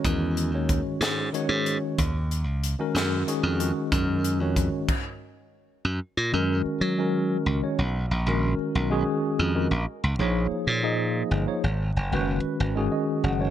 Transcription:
<<
  \new Staff \with { instrumentName = "Tine electric piano" } { \time 6/8 \key fis \major \tempo 4. = 62 << { r2. | r2. | r2. | r2. |
r2. | r2. | r2 dis''8 fis''8 | } \\ { <dis gis cis' fis' ais'>8. <dis gis cis' fis' cis''>4~ <dis gis cis' fis' cis''>16 <dis gis cis' fis' cis''>4 | r4 r16 <dis gis cis' fis' ais'>8. <dis gis cis' fis' gis'>8 <dis gis cis' fis' ais'>8 | <dis gis cis' fis' ais'>8. <dis gis cis' fis' cis''>8. r4. | r8. <dis gis cis' fis' ais'>4 <dis gis cis' fis' ais'>4 <dis gis cis' fis' cis''>16 |
r8. <dis gis cis' fis' ais'>4 <dis gis cis' fis' gis'>4 <dis gis cis' fis' ais'>16 | r8. <eis ais dis' gis' cis''>4 <eis ais dis' gis' dis''>4 <eis ais dis' gis' cis''>16 | r8. <dis gis cis' fis' b'>4 <dis gis cis' fis' gis'>4 <dis gis cis' fis' cis''>16 | } >> }
  \new Staff \with { instrumentName = "Slap bass" } { \clef bass \time 6/8 \key fis \major e,8. dis,8 r16 gis,8 r16 gis,8 r16 | dis,8. cis,8 r16 fis,8 r16 eis,8 r16 | fis,8. eis,8 r4. r16 | fis,16 r16 ais,16 fis,8 r16 fis4 cis,16 r16 |
b,,8 ais,,16 ais,,8 r16 b,,8 r8 eis,8 | ais,,16 r16 cis,16 ais,,8 r16 ais,4 g,,16 r16 | gis,,8 fis,,16 fis,,8 r16 gis,,8 r8 fis,,8 | }
  \new DrumStaff \with { instrumentName = "Drums" } \drummode { \time 6/8 <hh bd>8 hh8 <hh bd>8 <hh sn>8 hh8 hh8 | <hh bd>8 hh8 hh8 <hh sn>8 hh8 hh8 | <hh bd>8 hh8 <hh bd>8 <cymc bd>4. | r4. r4. |
r4. r4. | r4. r4. | r4. r4. | }
>>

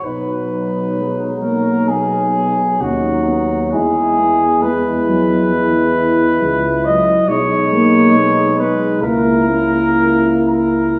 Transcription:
<<
  \new Staff \with { instrumentName = "Flugelhorn" } { \time 4/4 \key b \major \tempo 4 = 66 b'4. ais'8 gis'4 fis'4 | gis'4 b'2~ b'8 dis''8 | \key gis \minor cis''4. b'8 ais'4. ais'8 | }
  \new Staff \with { instrumentName = "French horn section" } { \time 4/4 \key b \major dis'2. dis'4 | e'4 e'2. | \key gis \minor dis'2 e'2 | }
  \new Staff \with { instrumentName = "Euphonium" } { \clef bass \time 4/4 \key b \major fis2. fis4 | gis4 gis2~ gis8 r8 | \key gis \minor gis2 ais2 | }
  \new Staff \with { instrumentName = "Euphonium" } { \clef bass \time 4/4 \key b \major fis4 gis8 ais8 b4 cis'8 b8 | gis8 b8 gis8 fis8 e4 gis8 fis8 | \key gis \minor gis8 ais8 b8 gis8 ais8 cis'4 r8 | }
  \new Staff \with { instrumentName = "Tuba" } { \clef bass \time 4/4 \key b \major b,,2. dis,4 | e,2. cis,8 r8 | \key gis \minor b,,2 cis,2 | }
>>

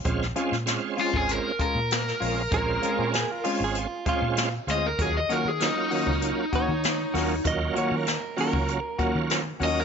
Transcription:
<<
  \new Staff \with { instrumentName = "Clean electric guitar" } { \time 4/4 \key bes \minor \tempo 4 = 97 r1 | bes'4 aes'16 f'8 aes'16 f'8 f'8. r8. | r2 r8 des''4. | ees''8 des''16 bes'8. bes'4.~ bes'16 r8. | }
  \new Staff \with { instrumentName = "Overdriven electric guitar" } { \time 4/4 \key bes \minor r4. f'16 aes'16 bes'8 bes'4.~ | bes'4. r2 ees''16 bes'16 | aes'16 ees''16 bes'16 aes'16 ees'2. | r2. r8 ees''16 bes'16 | }
  \new Staff \with { instrumentName = "Clean electric guitar" } { \time 4/4 \key bes \minor r8 <aes des' f'>8 r8 <aes des' f'>8 r8 <aes des' f'>8 r8 <aes des' f'>8 | r8 <aes des' f'>8 r8 <aes des' f'>8 r8 <aes des' f'>8 r8 <aes des' f'>8 | r8 <ees bes des' ges'>8 r8 <ees bes des' ges'>8 r8 <ees bes des' ges'>8 r8 <ees bes des' ges'>8 | r8 <ees bes des' ges'>8 r8 <ees bes des' ges'>8 r8 <ees bes des' ges'>8 r8 <ees bes des' ges'>8 | }
  \new Staff \with { instrumentName = "Tonewheel organ" } { \time 4/4 \key bes \minor <aes c' des' f'>8 <aes c' des' f'>8 <aes c' des' f'>4. r4 <aes c' des' f'>8 | <aes c' des' f'>4 r8 <aes c' des' f'>8 r8 <aes c' des' f'>8 r8 <aes c' des' f'>8 | <ges bes des' f'>8 <ges bes des' f'>8 <ges bes des' f'>4. r4 <ges bes des' f'>8 | <ges bes des' f'>4 r8 <ges bes des' f'>8 r8 <ges bes des' f'>8 r8 <ges bes des' f'>8 | }
  \new Staff \with { instrumentName = "Fingered electric bass" } { \clef bass \time 4/4 \key bes \minor bes,,8 r16 bes,8 r8 aes,,8 r8 bes,8. bes,,8 | bes,,8 r16 bes,8 r8 aes,,8 r8 bes,8. d,8 | ees,8 r16 ees8 r8 des,8 r8 ees8. ees,8 | ees,8 r16 ees8 r8 des,8 r8 ees8. ees,8 | }
  \new DrumStaff \with { instrumentName = "Drums" } \drummode { \time 4/4 <hh bd>16 sn16 hh16 sn16 <hh sn>8 hho16 bd16 hh8 <hh bd>8 <hh sn>16 sn16 hho8 | <hh bd>8 hh8 <hh sn>8 hho8 hh8 <hh bd>8 <hh sn>8 <hh sn>8 | <hh bd>8 hh8 <hh sn>8 hho16 bd16 hh8 <hh bd>8 <hh sn>8 <hho sn>8 | <hh bd>8 hh8 <hh sn>8 hho16 bd16 hh8 <hh bd>8 <hh sn>8 hho8 | }
>>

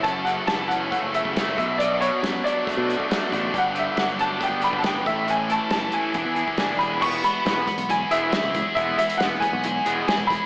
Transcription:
<<
  \new Staff \with { instrumentName = "Upright piano" } { \time 4/4 \key e \mixolydian \tempo 4 = 138 a''8 fis''8 a''8 fis''8 fis''8 e''4 e''8 | d''8 cis''4 d''2 r8 | fis''8 e''8 fis''8 a''8 g''8 b''16. a''32 g''8 e''8 | gis''8 a''8 a''8 gis''4. gis''8 b''8 |
cis'''8 b''4. gis''8 e''4. | e''8 e''8 fis''8 gis''4. gis''8 b''8 | }
  \new Staff \with { instrumentName = "Overdriven electric guitar" } { \time 4/4 \key e \mixolydian <fis a cis' a'>8 <a cis' a'>8 <fis a cis' a'>8 <fis a cis' a'>8 <fis a cis' a'>8 <fis a cis' a'>8 <fis a cis' a'>8 <fis b d' fis'>8 | <fis b d' fis'>8 <b d' fis'>8 <fis b d' fis'>8 <fis b d' fis'>8 <fis b d' fis'>8 <fis b d' fis'>8 <fis b d' fis'>8 <b d' fis'>8 | <b d' g'>8 <d' g'>8 <b d' g'>8 <b d' g'>8 <b d' g'>8 <b d' g'>8 <b d' g'>8 <e a cis' a'>8 | <e a cis' a'>8 <a cis' a'>8 <e a cis' a'>8 <e a cis' a'>8 <b d' gis'>8 <b d' gis'>8 <b d' gis'>8 <d' gis'>8 |
b4 b8 b8 e'8 gis'8 e'8 gis'8 | b4 b8 b8 e'8 gis'8 e'8 gis'8 | }
  \new Staff \with { instrumentName = "Overdriven electric guitar" } { \clef bass \time 4/4 \key e \mixolydian fis,8 cis8 e8 cis'8 a8 cis8 a8 b,8 | b,8 b,8 fis8 d'8 a8 b,8 a8 d'8 | g,8 d8 fis8 d'8 b8 d8 b8 a,8 | a,8 e4 e'8 e8 e8 d'8 gis'8 |
<e gis b>8 <e gis>8 <e gis b>8 <e gis>8 <e gis>8 <e gis b>8 <e gis>8 <e gis>8 | <e gis b>8 <e gis>8 <e gis b>8 <e gis>8 <e gis>8 <e gis b>8 <e gis>8 <e gis>8 | }
  \new Staff \with { instrumentName = "Picked electric bass" } { \clef bass \time 4/4 \key e \mixolydian fis,,4 fis,,4~ fis,,16 fis,,8 fis,,8 fis,,16 b,,8~ | b,,4 fis,8 r8. b,8 r8. a,,8 | g,,4 g,,4~ g,,16 g,,8 g,,8 g,,16 a,,8~ | a,,4 fis,,8 r8 e,,16 e,8 r16 fis,,8 e,,8 |
e,,8 r8 e,,8 r16 b,,8. e,,8 r16 cis,8 r16 | e,,8 r8 e,,8 r16 b,,8. e,,8 r16 e,,8 r16 | }
  \new DrumStaff \with { instrumentName = "Drums" } \drummode { \time 4/4 <hh bd>8 hh8 <hh sn>8 hh8 <hh bd>8 hh16 bd16 <hh sn>8 <hh bd>8 | hh8 hh8 <hh sn>8 hh8 <hh bd>8 hh16 bd16 <hh sn>8 <hh bd>8 | <hh bd>8 hh8 <hh sn>8 hh8 <hh bd>8 hh16 bd16 <hh sn>8 <hh bd>8 | hh8 hh8 <hh sn>8 hh8 <hh bd>8 hh16 bd16 <hh sn>8 <hh bd>8 |
<cymc bd>8 hh8 <hh sn>8 <hh bd>16 hh16 hh8 hh8 <hh sn>8 <hh bd>8 | <hh bd>8 hh16 hh16 <hh sn>8 <hh bd>8 hh8 hh8 <hh sn>8 <hh bd>8 | }
>>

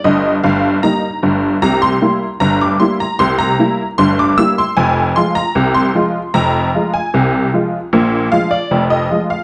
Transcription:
<<
  \new Staff \with { instrumentName = "Honky-tonk piano" } { \time 2/4 \key f \dorian \tempo 4 = 76 ees''8 f''8 bes''4 | bes''16 c'''8. bes''16 d'''16 c'''16 bes''16 | c'''16 bes''8. c'''16 d'''16 e'''16 c'''16 | aes''8 c'''16 bes''8 c'''8. |
bes''8. aes''8 r8. | r8 f''16 d''8 ees''8 f''16 | }
  \new Staff \with { instrumentName = "Honky-tonk piano" } { \clef bass \time 2/4 \key f \dorian <g,, g,>8 <g,, g,>8 <g bes ees'>8 <g,, g,>8 | <c, c>8 <g bes e'>8 <g,, g,>8 <g bes e'>8 | <c, c>8 <g bes e'>8 <g,, g,>8 <g bes e'>8 | <f,, f,>8 <f aes f'>8 <c, c>8 <f aes f'>8 |
<f,, f,>8 <f aes f'>8 <c, c>8 <f aes f'>8 | <bes,, bes,>8 <f aes f'>8 <f,, f,>8 <f aes f'>8 | }
>>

